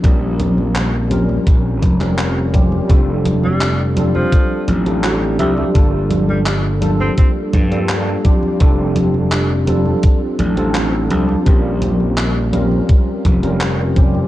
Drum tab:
HH |x-x-x-x-x-xxx-x-|x-x-x-x-x-xxx-x-|x-x-x-x-x-xxx-x-|x-x-x-x-x-xxx-x-|
CP |----x------xx---|----x-------x---|----x-------x---|----x-------x---|
CG |o-ooo-ooo-ooo-oo|o-ooo-ooo-ooo-oo|o-ooo-ooo-ooo-oo|o-ooo-ooo-ooo-oo|
BD |o-------o-o---o-|o-------o-------|o-------o-o---o-|o-------o-------|

HH |x-x-x-x-x-xxx-x-|
CP |----x-------x---|
CG |o-ooo-ooo-ooo-oo|
BD |o-------o-o---o-|